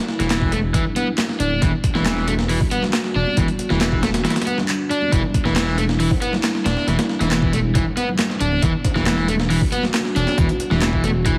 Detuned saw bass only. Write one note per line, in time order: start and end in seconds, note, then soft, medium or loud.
0.20 0.83 E1 loud
1.40 1.59 D1 medium
1.62 1.71 E1 loud
1.95 2.58 E1 loud
3.15 3.25 E1 loud
3.37 3.47 E1 loud
3.70 4.25 E1 loud
5.12 5.22 E1 loud
5.45 6.08 E1 loud
6.66 6.75 E1 loud
6.87 6.97 E1 loud
7.21 7.84 E1 loud
8.41 8.59 D1 medium
8.63 8.72 E1 loud
8.96 9.59 E1 loud
10.16 10.25 E1 loud
10.38 10.47 E1 loud
10.71 11.34 E1 loud